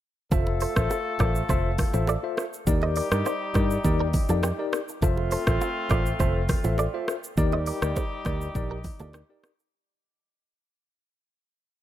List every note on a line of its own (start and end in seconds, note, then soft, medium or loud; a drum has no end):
0.31 0.64 F1 loud
0.31 2.34 A3 medium
0.31 0.73 F4 medium
0.31 2.34 F4 medium
0.31 0.44 F4 medium
0.31 0.73 A4 medium
0.31 2.34 A4 loud
0.31 0.43 A4 loud
0.31 0.73 C5 medium
0.31 0.73 E5 loud
0.31 kick loud
0.31 low conga medium
0.31 shaker medium
0.47 high bongo medium
0.61 0.73 A4 medium
0.61 0.73 C5 medium
0.61 open hi-hat medium
0.61 shaker medium
0.76 0.87 A1 medium
0.76 0.97 F4 medium
0.76 0.97 A4 medium
0.76 0.97 C5 medium
0.76 0.97 E5 medium
0.76 kick medium
0.76 cross-stick loud
0.76 shaker medium
0.90 high bongo medium
0.90 shaker medium
1.19 1.41 A1 loud
1.19 1.41 F4 medium
1.19 1.41 A4 medium
1.19 1.32 A#4 medium
1.19 1.41 C5 medium
1.19 1.31 D5 medium
1.19 1.41 E5 medium
1.19 kick medium
1.19 cross-stick medium
1.19 low bongo medium
1.19 shaker medium
1.35 shaker medium
1.49 1.82 F1 loud
1.49 1.71 F4 medium
1.49 1.71 A4 medium
1.49 1.71 C5 medium
1.49 1.71 E5 loud
1.49 kick loud
1.49 low conga medium
1.49 shaker medium
1.78 kick medium
1.78 cross-stick medium
1.78 open hi-hat medium
1.78 low conga medium
1.78 shaker medium
1.94 2.16 A1 medium
1.94 2.15 F4 medium
1.94 2.15 A4 medium
1.94 2.15 C5 medium
1.94 2.15 E5 medium
1.94 low bongo medium
1.94 shaker medium
2.07 2.30 A4 medium
2.07 2.30 D5 medium
2.07 high bongo medium
2.07 shaker medium
2.23 2.44 F4 medium
2.23 2.44 A4 medium
2.23 2.44 C5 medium
2.23 2.44 E5 medium
2.37 cross-stick medium
2.37 high bongo medium
2.37 shaker medium
2.53 shaker medium
2.67 3.00 D#2 loud
2.67 4.69 G3 medium
2.67 3.08 D#4 medium
2.67 4.69 D#4 medium
2.67 3.08 G4 medium
2.67 4.69 G4 loud
2.67 3.08 A#4 medium
2.67 3.08 D5 loud
2.67 kick loud
2.67 low conga medium
2.67 shaker medium
2.82 2.93 C5 medium
2.82 2.93 D#5 medium
2.82 high bongo medium
2.96 3.08 A#4 medium
2.96 3.08 D5 medium
2.96 open hi-hat medium
2.96 shaker medium
3.11 3.22 G2 medium
3.11 3.32 D#4 medium
3.11 3.32 G4 medium
3.11 3.32 A#4 medium
3.11 3.33 D5 medium
3.11 cross-stick loud
3.11 shaker medium
3.26 3.48 G4 medium
3.26 3.47 C5 medium
3.26 high bongo medium
3.26 shaker medium
3.54 3.77 G2 medium
3.54 3.77 D#4 medium
3.54 3.77 G4 medium
3.54 3.77 A#4 medium
3.54 3.77 D5 medium
3.54 kick loud
3.54 cross-stick medium
3.54 low bongo medium
3.54 shaker medium
3.71 shaker medium
3.84 4.17 D#2 medium
3.84 4.06 D#4 loud
3.84 4.06 G4 medium
3.84 4.06 A#4 medium
3.84 4.06 D5 loud
3.84 kick loud
3.84 low conga medium
3.84 shaker medium
4.00 4.11 G4 medium
4.00 4.10 A#4 medium
4.13 kick loud
4.13 open hi-hat medium
4.13 low conga medium
4.13 shaker medium
4.29 4.51 F2 loud
4.29 4.50 D#4 medium
4.29 4.40 F4 medium
4.29 4.50 G4 medium
4.29 4.40 A4 medium
4.29 4.50 A#4 medium
4.29 4.50 D5 medium
4.29 low bongo medium
4.29 shaker medium
4.43 4.65 D#4 medium
4.43 4.65 G4 medium
4.43 cross-stick loud
4.43 high bongo medium
4.43 shaker medium
4.58 4.79 D#4 medium
4.58 4.79 G4 medium
4.58 4.79 A#4 medium
4.58 4.80 D5 medium
4.73 cross-stick loud
4.73 high bongo medium
4.73 shaker medium
4.89 shaker medium
5.02 5.35 F1 loud
5.02 7.04 A3 medium
5.02 7.04 C4 medium
5.02 5.43 F4 medium
5.02 7.04 F4 loud
5.02 5.14 F4 medium
5.02 5.43 A4 medium
5.02 5.14 A4 loud
5.02 5.43 C5 medium
5.02 5.44 E5 loud
5.02 kick loud
5.02 low conga medium
5.02 shaker medium
5.17 high bongo medium
5.31 5.44 A4 medium
5.31 5.43 C5 medium
5.31 open hi-hat medium
5.31 shaker medium
5.47 5.57 A1 medium
5.47 5.68 F4 medium
5.47 5.68 A4 medium
5.47 5.68 C5 medium
5.47 5.68 E5 medium
5.47 kick loud
5.47 cross-stick loud
5.47 shaker medium
5.61 high bongo medium
5.61 shaker medium
5.89 6.12 A1 loud
5.89 6.12 F4 medium
5.89 6.12 A4 medium
5.89 6.02 A#4 medium
5.89 6.12 C5 medium
5.89 6.02 D5 medium
5.89 6.12 E5 medium
5.89 kick loud
5.89 cross-stick medium
5.89 low bongo medium
5.89 shaker medium
6.06 shaker medium
6.19 6.53 F1 loud
6.19 6.41 F4 medium
6.19 6.41 A4 medium
6.19 6.42 A4 medium
6.19 6.41 C5 medium
6.19 6.41 E5 loud
6.19 kick medium
6.19 low conga medium
6.19 shaker medium
6.49 kick medium
6.49 cross-stick medium
6.49 open hi-hat medium
6.49 low conga medium
6.49 shaker medium
6.64 6.86 A1 medium
6.64 6.85 F4 medium
6.64 6.85 A4 medium
6.64 6.85 C5 medium
6.64 6.85 E5 medium
6.64 low bongo medium
6.64 shaker medium
6.78 7.01 A4 medium
6.78 7.00 D5 medium
6.78 high bongo medium
6.78 shaker medium
6.94 7.15 F4 medium
6.94 7.15 A4 medium
6.94 7.15 C5 medium
6.94 7.15 E5 medium
7.08 cross-stick medium
7.08 high bongo medium
7.08 shaker medium
7.24 shaker medium
7.37 7.70 D#2 loud
7.37 9.39 G3 medium
7.37 7.79 D#4 loud
7.37 9.40 D#4 medium
7.37 7.79 G4 medium
7.37 9.40 G4 loud
7.37 7.79 A#4 medium
7.37 7.79 D5 loud
7.37 kick loud
7.37 low conga medium
7.37 shaker medium
7.52 7.64 C5 medium
7.52 7.63 D#5 medium
7.52 high bongo medium
7.66 7.79 A#4 medium
7.66 7.78 D5 medium
7.66 open hi-hat medium
7.66 shaker medium
7.82 7.93 D2 loud
7.82 8.03 D#4 medium
7.82 8.03 G4 medium
7.82 8.03 A#4 medium
7.82 8.03 D5 medium
7.82 cross-stick loud
7.82 shaker medium
7.96 8.18 G4 medium
7.96 8.18 C5 medium
7.96 kick loud
7.96 high bongo medium
7.96 shaker medium
8.25 8.47 D2 medium
8.25 8.47 D#4 medium
8.25 8.47 G4 medium
8.25 8.47 A#4 medium
8.25 8.47 D5 medium
8.25 kick loud
8.25 cross-stick medium
8.25 low bongo medium
8.25 shaker medium
8.41 shaker medium
8.55 8.88 A#1 loud
8.55 8.77 D#4 medium
8.55 8.77 G4 medium
8.55 8.77 A#4 medium
8.55 8.77 D5 loud
8.55 kick loud
8.55 low conga medium
8.55 shaker medium
8.71 8.82 G4 medium
8.71 8.81 A#4 medium
8.84 kick medium
8.84 open hi-hat medium
8.84 low conga medium
8.84 shaker medium
8.99 9.22 D2 medium
8.99 9.21 D#4 medium
8.99 9.11 F4 medium
8.99 9.21 G4 medium
8.99 9.10 A4 medium
8.99 9.21 A#4 medium
8.99 9.21 D5 medium
8.99 low bongo medium
8.99 shaker medium
9.13 9.36 D#4 medium
9.13 9.36 G4 medium
9.13 cross-stick loud
9.13 high bongo medium
9.13 shaker medium
9.29 9.50 D#4 medium
9.29 9.50 G4 medium
9.29 9.50 A#4 medium
9.29 9.50 D5 medium
9.44 cross-stick loud
9.44 high bongo medium
9.44 shaker medium
9.59 shaker medium